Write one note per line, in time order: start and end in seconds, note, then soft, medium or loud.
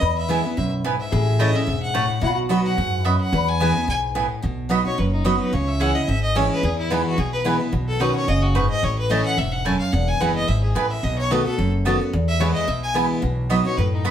0.00 0.54 E2 medium
0.00 0.40 E2 medium
0.00 1.15 B4 loud
0.00 0.14 D#5 medium
0.17 0.55 E5 medium
0.29 0.43 E3 medium
0.29 0.44 G#3 medium
0.29 0.39 B3 medium
0.29 0.44 B3 medium
0.29 0.39 E4 medium
0.29 0.42 E4 medium
0.29 0.39 B4 medium
0.29 0.40 G#5 medium
0.44 0.57 B3 soft
0.44 0.56 E4 medium
0.57 0.95 B1 medium
0.57 0.83 F#2 medium
0.57 0.71 E5 medium
0.84 1.11 G#2 loud
0.84 0.94 B3 medium
0.84 0.94 E4 medium
0.84 0.95 B4 medium
0.84 0.95 G#5 loud
1.00 1.41 E5 medium
1.12 1.50 A1 loud
1.12 1.65 A2 medium
1.12 2.18 G#4 medium
1.39 1.54 E3 medium
1.39 1.49 A3 medium
1.39 1.54 A3 medium
1.39 1.54 C#4 medium
1.39 1.49 E4 medium
1.39 1.52 E4 medium
1.39 1.50 C#5 medium
1.39 1.56 D#5 medium
1.39 1.50 A5 medium
1.53 1.67 C#4 soft
1.53 1.66 E4 medium
1.53 1.81 E5 medium
1.67 2.05 E1 medium
1.67 1.93 G#2 medium
1.82 2.20 F#5 loud
1.94 2.21 A2 loud
1.94 2.04 A3 medium
1.94 2.04 E4 medium
1.94 2.05 C#5 loud
1.94 2.05 A5 medium
2.21 2.60 B1 medium
2.21 2.75 B2 medium
2.21 3.02 F#4 medium
2.21 2.36 F#5 medium
2.49 2.76 F#3 medium
2.49 2.59 B3 medium
2.49 2.76 B3 loud
2.49 2.76 D#4 medium
2.49 2.60 F#4 medium
2.49 2.77 F#4 loud
2.49 2.60 D#5 medium
2.49 2.60 B5 medium
2.65 3.06 F#5 loud
2.77 3.15 F#2 medium
2.77 3.04 G#2 medium
3.02 3.32 F#2 medium
3.02 3.15 B3 loud
3.02 3.36 E4 medium
3.02 3.15 F#4 medium
3.02 3.15 D#5 medium
3.02 3.20 E5 medium
3.06 3.15 B5 loud
3.20 3.50 F#5 loud
3.32 3.71 E2 loud
3.32 3.85 E2 medium
3.32 4.27 B4 medium
3.48 3.88 G#5 loud
3.60 3.75 E3 medium
3.60 3.75 G#3 loud
3.60 3.70 B3 medium
3.60 3.75 B3 medium
3.60 3.70 E4 medium
3.60 3.74 E4 loud
3.60 3.70 B4 medium
3.60 3.70 G#5 medium
3.76 3.88 B3 medium
3.76 3.88 E4 medium
3.88 4.26 B1 medium
3.88 4.14 G#2 medium
3.88 3.98 G#5 medium
4.15 4.42 A2 medium
4.15 4.25 B3 medium
4.15 4.25 E4 medium
4.15 4.25 B4 medium
4.15 4.26 G#5 medium
4.42 4.81 B1 loud
4.42 4.95 B2 medium
4.69 4.84 F#3 medium
4.69 4.84 B3 loud
4.69 4.80 B3 medium
4.69 4.85 D#4 medium
4.69 4.80 F#4 medium
4.69 4.84 F#4 medium
4.69 4.80 D#5 medium
4.69 4.80 B5 medium
4.85 4.98 D#4 soft
4.85 4.97 F#4 medium
4.85 5.00 C#5 medium
4.98 5.36 F#1 medium
4.98 5.50 F#2 medium
4.98 5.12 B4 medium
5.13 5.26 D#4 medium
5.24 5.51 F#3 medium
5.24 5.35 B3 medium
5.24 5.51 B3 loud
5.24 5.52 D#4 loud
5.24 5.39 F#4 medium
5.24 5.35 F#4 medium
5.24 5.52 F#4 loud
5.24 5.35 D#5 loud
5.24 5.35 B5 medium
5.40 5.54 B4 medium
5.53 5.91 C#2 loud
5.53 6.05 C#3 medium
5.53 5.69 C#5 medium
5.67 5.82 E5 medium
5.80 5.94 E3 medium
5.80 5.95 G#3 medium
5.80 5.90 C#4 medium
5.80 5.95 C#4 medium
5.80 5.94 E4 medium
5.80 5.90 G#4 medium
5.80 5.90 E5 medium
5.80 5.96 F#5 medium
5.80 5.90 G#5 loud
5.95 6.08 C#4 soft
5.95 6.07 E4 medium
5.95 6.10 D#5 medium
6.08 6.46 G#1 medium
6.08 6.61 G#2 medium
6.08 6.22 E5 loud
6.23 6.38 D#5 medium
6.35 6.62 E3 loud
6.35 6.62 G#3 loud
6.35 6.45 C#4 medium
6.35 6.62 C#4 loud
6.35 6.62 E4 loud
6.35 6.45 G#4 medium
6.35 6.51 C#5 medium
6.35 6.46 E5 medium
6.35 6.46 G#5 medium
6.51 6.66 B4 medium
6.63 7.01 E2 loud
6.63 7.16 E2 medium
6.63 6.78 G#4 medium
6.78 6.93 E4 medium
6.90 7.17 E3 medium
6.90 7.17 G#3 medium
6.90 7.00 B3 medium
6.90 7.17 B3 medium
6.90 7.05 D#4 medium
6.90 7.00 E4 medium
6.90 7.18 E4 loud
6.90 7.01 B4 medium
6.90 7.01 G#5 medium
7.06 7.20 F#4 medium
7.18 7.56 B1 medium
7.18 7.70 B2 medium
7.18 7.32 G#4 medium
7.33 7.40 B4 medium
7.44 7.59 E3 medium
7.44 7.59 G#3 loud
7.44 7.55 B3 medium
7.44 7.60 B3 medium
7.44 7.55 E4 loud
7.44 7.58 E4 loud
7.44 7.55 B4 medium
7.44 7.56 G#5 medium
7.59 7.73 B3 soft
7.59 7.72 E4 medium
7.72 8.11 B1 loud
7.72 7.98 B2 medium
7.88 8.01 A4 medium
8.00 8.26 B2 medium
8.00 8.27 D#3 medium
8.00 8.27 C#4 medium
8.00 8.10 D#4 medium
8.00 8.27 F#4 loud
8.00 8.15 B4 medium
8.00 8.10 B4 medium
8.00 8.11 F#5 loud
8.00 8.11 C#6 medium
8.15 8.29 C#5 loud
8.28 8.66 F#1 medium
8.28 8.54 C#3 medium
8.28 8.43 D#5 medium
8.42 8.57 F#4 medium
8.55 8.81 G#2 medium
8.55 8.65 D#4 medium
8.55 8.65 B4 medium
8.55 8.69 B4 medium
8.55 8.65 F#5 medium
8.55 8.66 C#6 medium
8.70 8.85 D#5 loud
8.83 9.21 A1 loud
8.83 9.35 A2 medium
8.83 8.97 C#5 medium
8.98 9.12 B4 medium
9.10 9.36 E3 medium
9.10 9.36 A3 medium
9.10 9.20 A3 medium
9.10 9.37 C#4 medium
9.10 9.37 E4 medium
9.10 9.20 E4 medium
9.10 9.20 C#5 medium
9.10 9.25 D#5 loud
9.10 9.21 A5 medium
9.25 9.39 F#5 loud
9.38 9.76 E1 medium
9.38 9.64 G#2 medium
9.38 9.53 E5 medium
9.52 9.66 F#5 medium
9.65 9.92 F#2 medium
9.65 9.75 A3 medium
9.65 9.75 E4 medium
9.65 9.75 C#5 loud
9.65 9.78 G#5 loud
9.65 9.75 A5 loud
9.79 9.94 F5 medium
9.92 10.12 E1 loud
9.92 10.46 E2 medium
9.92 10.09 F#5 medium
10.08 10.22 G#5 loud
10.20 10.44 F#1 medium
10.20 10.47 E3 medium
10.20 10.47 G#3 loud
10.20 10.30 B3 medium
10.20 10.47 B3 medium
10.20 10.30 E4 medium
10.20 10.47 E4 medium
10.20 10.30 B4 medium
10.20 10.34 F#5 medium
10.20 10.31 G#5 medium
10.35 10.49 D#5 loud
10.48 10.71 G#1 medium
10.48 10.74 G#2 medium
10.48 10.62 E5 medium
10.63 10.77 G#4 medium
10.75 10.99 A1 medium
10.75 11.02 A2 loud
10.75 10.85 B3 medium
10.75 10.85 E4 loud
10.75 10.92 B4 medium
10.75 10.85 B4 medium
10.75 10.85 G#5 loud
10.90 11.05 E5 loud
11.03 11.41 B1 loud
11.03 11.55 B2 medium
11.03 11.17 D#5 medium
11.18 11.33 C#5 loud
11.31 11.45 D#3 medium
11.31 11.45 A3 medium
11.31 11.40 B3 medium
11.31 11.45 B3 medium
11.31 11.40 F#4 medium
11.31 11.45 F#4 loud
11.31 11.45 B4 medium
11.31 11.40 D#5 loud
11.31 11.41 A5 medium
11.45 11.58 B3 medium
11.45 11.58 F#4 medium
11.45 11.71 A4 medium
11.58 11.96 F#1 medium
11.58 12.10 F#2 medium
11.85 11.99 D#3 medium
11.85 12.00 A3 medium
11.85 11.95 B3 medium
11.85 12.00 B3 loud
11.85 11.95 F#4 medium
11.85 12.00 F#4 loud
11.85 11.95 D#5 medium
11.85 11.95 A5 medium
12.01 12.14 B3 soft
12.01 12.13 F#4 medium
12.13 12.51 E2 loud
12.13 12.65 E2 medium
12.28 12.42 E5 loud
12.40 12.66 E3 medium
12.40 12.66 G#3 loud
12.40 12.50 B3 medium
12.40 12.67 B3 medium
12.40 12.50 E4 medium
12.40 12.67 E4 loud
12.40 12.50 B4 loud
12.40 12.53 C#5 medium
12.40 12.50 G#5 medium
12.54 12.69 D#5 medium
12.67 13.06 B1 medium
12.67 13.20 B2 medium
12.67 12.82 E5 medium
12.83 12.90 G#5 loud
12.94 13.21 E3 medium
12.94 13.21 G#3 loud
12.94 13.04 B3 medium
12.94 13.21 B3 loud
12.94 13.05 E4 medium
12.94 13.22 E4 loud
12.94 13.05 B4 loud
12.94 13.05 G#5 loud
13.22 13.60 B1 loud
13.22 13.75 B2 medium
13.50 13.64 F#3 loud
13.50 13.59 B3 medium
13.50 13.64 B3 medium
13.50 13.65 D#4 loud
13.50 13.60 F#4 medium
13.50 13.63 F#4 loud
13.50 13.60 D#5 medium
13.50 13.60 B5 medium
13.65 13.78 D#4 soft
13.65 13.77 F#4 medium
13.65 13.79 C#5 medium
13.77 14.11 F#2 medium
13.77 14.04 A2 medium
13.77 13.92 B4 medium
13.93 14.07 D#4 medium
14.04 14.11 B2 medium
14.04 14.11 B3 medium
14.04 14.11 F#4 loud
14.04 14.11 F#4 medium
14.04 14.11 D#5 medium
14.04 14.11 B5 loud